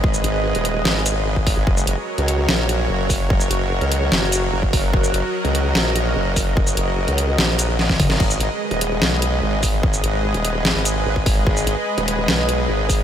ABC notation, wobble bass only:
X:1
M:4/4
L:1/16
Q:1/4=147
K:G#m
V:1 name="Wobble bass" clef=bass
G,,,2 G,,,3 D,,,3 G,,,6 G,,, G,,, | F,,,2 F,,, z2 C,,3 A,,,4 F,,,4 | F,,,2 F,,,3 C,,3 F,,, F,,,3 F,,,4 | F,,,2 F,,, z2 C,,3 A,,,4 F,,,4 |
F,,,2 F,,,3 C,,3 A,,,6 F,,, G,,, | G,,,2 G,,, z2 D,,,3 B,,,4 G,,,4 | G,,,2 G,,,3 D,,,3 G,,, G,,,3 G,,,4 | G,,,2 G,,, z2 D,,,3 B,,,4 G,,,4 |]